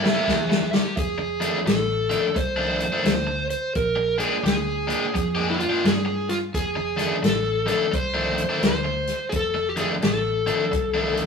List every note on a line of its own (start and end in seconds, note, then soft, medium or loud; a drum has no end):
0.04 0.29 G4 loud
0.04 snare loud
0.08 0.96 E5 loud
0.15 0.35 C3 medium
0.15 0.35 A#3 medium
0.15 0.34 E4 medium
0.15 0.34 A4 medium
0.28 0.74 E2 medium
0.28 0.73 G#4 medium
0.28 kick medium
0.28 snare medium
0.50 muted overdriven electric guitar stroke soft
0.50 snare loud
0.74 0.96 G4 loud
0.74 snare loud
0.97 1.43 F1 medium
0.97 1.67 G#4 loud
0.97 kick loud
0.97 closed hi-hat medium
1.18 muted overdriven electric guitar stroke soft
1.40 1.57 F2 medium
1.40 1.57 D#3 medium
1.40 1.58 A3 medium
1.40 1.58 D4 loud
1.40 closed hi-hat medium
1.66 2.13 A1 medium
1.66 2.39 A4 medium
1.66 muted overdriven electric guitar stroke soft
1.66 snare loud
1.66 closed hi-hat medium
2.10 2.27 F2 medium
2.10 2.27 D#3 medium
2.10 2.27 A3 medium
2.10 2.27 D4 medium
2.10 closed hi-hat medium
2.35 2.82 C2 medium
2.35 3.05 C5 loud
2.35 muted overdriven electric guitar stroke medium
2.35 kick loud
2.35 closed hi-hat medium
2.56 2.84 F2 medium
2.56 2.84 D#3 medium
2.56 2.84 A3 medium
2.56 2.83 D4 medium
2.80 closed hi-hat medium
2.92 3.12 F2 medium
2.92 3.12 D#3 medium
2.92 3.12 A3 medium
2.92 3.12 D4 medium
3.05 3.51 D2 medium
3.05 3.49 C5 loud
3.05 snare loud
3.05 closed hi-hat medium
3.27 muted overdriven electric guitar stroke soft
3.50 3.76 C5 loud
3.50 closed hi-hat medium
3.75 4.22 A#1 medium
3.75 4.20 A#4 loud
3.75 kick loud
3.75 closed hi-hat medium
3.96 muted overdriven electric guitar stroke medium
4.18 4.35 A#2 medium
4.18 4.35 G#3 medium
4.18 4.35 D4 medium
4.18 4.36 G4 loud
4.18 4.43 G#4 medium
4.18 closed hi-hat medium
4.43 4.90 D2 medium
4.43 5.46 G#4 medium
4.43 muted overdriven electric guitar stroke soft
4.43 snare medium
4.43 closed hi-hat medium
4.87 5.05 A#2 medium
4.87 5.05 G#3 medium
4.87 5.05 D4 medium
4.87 5.05 G4 medium
4.87 closed hi-hat medium
5.14 5.61 F2 medium
5.14 muted overdriven electric guitar stroke soft
5.14 kick loud
5.14 closed hi-hat medium
5.35 5.62 A#2 medium
5.35 5.62 G#3 medium
5.35 5.62 D4 medium
5.35 5.62 G4 medium
5.50 5.59 E4 medium
5.59 5.85 F4 medium
5.59 closed hi-hat medium
5.69 5.91 A#2 medium
5.69 5.90 G#3 medium
5.69 5.90 D4 medium
5.69 5.90 G4 medium
5.84 6.56 G2 medium
5.84 6.30 G#4 medium
5.84 snare loud
5.84 closed hi-hat medium
6.05 muted overdriven electric guitar stroke medium
6.29 6.36 F4 medium
6.29 snare soft
6.29 closed hi-hat medium
6.54 7.01 F1 medium
6.54 7.25 G#4 medium
6.54 kick loud
6.54 snare soft
6.54 closed hi-hat medium
6.76 muted overdriven electric guitar stroke soft
6.97 7.14 F2 medium
6.97 7.14 D#3 medium
6.97 7.15 A3 loud
6.97 7.15 D4 medium
6.97 snare soft
6.97 closed hi-hat medium
7.22 7.70 A1 medium
7.22 7.66 A4 medium
7.22 muted overdriven electric guitar stroke soft
7.22 snare loud
7.22 closed hi-hat medium
7.66 7.83 F2 medium
7.66 7.84 D#3 medium
7.66 7.84 A3 medium
7.66 7.84 D4 medium
7.66 7.95 A4 medium
7.66 snare soft
7.66 closed hi-hat medium
7.91 8.40 C2 loud
7.91 8.65 C5 loud
7.91 muted overdriven electric guitar stroke soft
7.91 kick loud
7.91 closed hi-hat medium
8.14 8.41 F2 medium
8.14 8.41 D#3 medium
8.14 8.41 A3 medium
8.14 8.41 D4 medium
8.38 closed hi-hat medium
8.49 8.70 F2 medium
8.49 8.70 D#3 medium
8.49 8.70 A3 medium
8.49 8.69 D4 medium
8.62 9.09 D2 medium
8.62 9.31 C5 medium
8.62 snare loud
8.62 closed hi-hat medium
8.85 muted overdriven electric guitar stroke soft
9.07 snare soft
9.07 closed hi-hat medium
9.29 9.80 F1 medium
9.29 9.34 G#4 medium
9.29 kick loud
9.29 closed hi-hat medium
9.36 9.68 A4 medium
9.54 muted overdriven electric guitar stroke soft
9.69 9.78 G4 medium
9.76 9.94 F2 medium
9.76 9.94 D#3 medium
9.76 9.94 A3 medium
9.76 9.94 D4 medium
9.76 9.86 G#4 medium
9.76 closed hi-hat medium
10.02 10.50 A1 medium
10.02 11.26 A4 medium
10.02 muted overdriven electric guitar stroke soft
10.02 snare loud
10.02 closed hi-hat medium
10.46 10.64 F2 medium
10.46 10.64 D#3 medium
10.46 10.64 A3 medium
10.46 10.64 D4 medium
10.46 closed hi-hat medium
10.71 11.20 C2 medium
10.71 muted overdriven electric guitar stroke soft
10.71 kick loud
10.71 closed hi-hat medium
10.94 11.21 F2 medium
10.94 11.21 D#3 medium
10.94 11.21 A3 medium
10.94 11.20 D4 medium
11.17 closed hi-hat medium